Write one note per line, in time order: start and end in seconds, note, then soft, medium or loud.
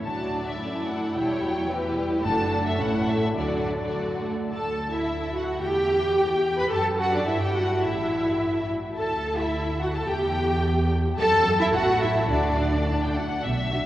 0.05 0.57 D2 soft
0.05 0.57 F#3 soft
0.05 0.57 D4 soft
0.05 0.57 F#4 soft
0.05 1.12 D5 soft
0.05 0.44 A5 medium
0.46 0.87 E5 soft
0.61 1.16 F#2 soft
0.61 1.16 A3 soft
0.61 0.89 C#4 soft
0.61 1.69 E4 soft
0.88 1.16 D4 soft
0.88 1.16 F#5 soft
1.15 1.66 E1 soft
1.15 2.25 E2 soft
1.15 1.43 G3 soft
1.15 1.70 E4 soft
1.15 1.71 C#5 soft
1.15 1.97 G5 medium
1.43 1.70 F#3 soft
1.70 1.97 E3 soft
1.70 2.24 E4 soft
1.70 2.25 G4 soft
1.70 2.26 B4 soft
1.97 2.25 G3 soft
2.24 2.77 F#1 medium
2.24 2.81 F#2 medium
2.24 2.79 A3 medium
2.24 2.81 D4 medium
2.24 2.81 F#4 soft
2.24 2.80 A4 soft
2.24 2.63 A5 medium
2.67 2.81 E5 medium
2.80 3.34 A1 medium
2.80 3.38 A2 medium
2.80 3.36 A3 soft
2.80 3.37 C#4 soft
2.80 3.37 E4 medium
2.80 3.37 A4 soft
2.80 3.09 F#5 medium
3.09 3.38 E5 medium
3.37 3.91 D2 soft
3.37 4.30 D3 soft
3.37 3.88 F#3 soft
3.37 3.88 D4 soft
3.37 4.31 F#4 soft
3.37 4.30 A4 soft
3.37 4.24 D5 medium
3.94 4.21 F#3 soft
4.23 4.52 A3 soft
4.51 5.58 D2 soft
4.51 4.90 A4 medium
4.51 4.91 A4 medium
4.51 4.91 A5 medium
4.93 5.34 E4 medium
4.93 5.35 E4 medium
4.93 5.35 E5 medium
4.93 5.35 E5 soft
5.35 5.62 F#4 medium
5.35 5.63 F#4 medium
5.35 5.62 F#5 soft
5.35 5.44 F#5 soft
5.62 6.69 E2 medium
5.62 6.58 G4 medium
5.62 6.56 G4 medium
5.62 6.56 G5 medium
6.58 6.71 B4 medium
6.58 6.64 B4 medium
6.58 6.71 B5 medium
6.58 6.63 B5 medium
6.71 7.23 F#2 medium
6.71 6.98 A4 medium
6.71 6.99 A4 medium
6.71 6.99 A5 medium
6.99 7.13 F#4 medium
6.99 7.13 F#5 medium
6.99 7.14 F#5 medium
7.13 7.19 D4 medium
7.13 7.20 D4 medium
7.13 7.27 D5 medium
7.27 7.83 G2 medium
7.27 7.41 E4 medium
7.27 7.41 E5 medium
7.41 7.55 G4 medium
7.41 7.56 G4 medium
7.41 7.55 G5 medium
7.55 7.83 F#4 medium
7.55 7.82 F#5 medium
7.55 7.84 F#5 medium
7.83 8.74 A1 soft
7.83 8.66 E4 medium
7.83 8.68 E4 medium
7.83 8.68 E5 medium
7.83 8.66 E5 soft
8.97 10.05 D2 medium
8.97 9.36 A4 medium
8.97 9.36 A5 medium
9.39 9.80 E4 medium
9.39 9.81 E4 medium
9.39 9.81 E5 medium
9.39 9.80 E5 medium
9.81 9.95 F#4 medium
9.81 9.95 F#5 medium
9.81 9.87 F#5 medium
9.95 10.09 A4 medium
9.95 10.08 A5 medium
9.95 10.00 A5 medium
10.08 11.19 E2 medium
10.08 10.91 G4 medium
10.08 10.90 G4 medium
10.08 10.89 G5 medium
10.08 10.91 G5 medium
11.18 11.73 F#2 medium
11.18 11.57 A4 loud
11.18 11.57 A4 medium
11.18 11.57 A5 medium
11.18 11.58 A5 medium
11.60 11.66 E4 medium
11.60 11.75 E4 medium
11.60 11.66 E5 medium
11.74 12.29 A1 medium
11.74 12.01 F#4 medium
11.74 12.02 F#4 medium
11.74 12.02 F#5 medium
12.02 12.10 E4 medium
12.02 12.30 E4 medium
12.02 12.10 E5 medium
12.02 12.30 E5 medium
12.30 13.24 D2 medium
12.30 13.14 D4 medium
12.30 12.86 D5 medium
12.30 13.15 D5 medium
12.88 13.00 A5 medium
13.03 13.16 G5 medium
13.16 13.44 F#5 medium
13.44 13.86 B1 medium
13.44 13.86 B2 medium
13.44 13.86 E5 medium
13.72 13.86 D4 medium
13.72 13.86 F#4 medium